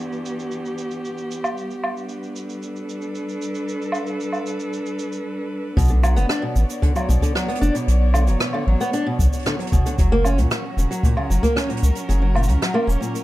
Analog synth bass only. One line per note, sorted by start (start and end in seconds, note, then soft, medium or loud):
5.77 6.18 B1 loud
6.16 6.25 F#1 loud
6.56 6.65 A1 loud
7.09 7.18 B1 medium
7.62 7.70 F#1 medium
7.88 8.29 B1 loud
8.28 8.36 F#1 medium
8.67 8.76 A1 loud
9.19 9.28 B1 medium
9.72 9.81 F#1 medium
9.98 10.39 F#1 loud
10.38 10.47 C#2 medium
10.77 10.86 E1 loud
11.30 11.39 F#1 medium
11.83 11.91 C#2 medium
12.09 12.50 F#1 loud
12.48 12.57 C#2 loud
12.88 12.96 E1 loud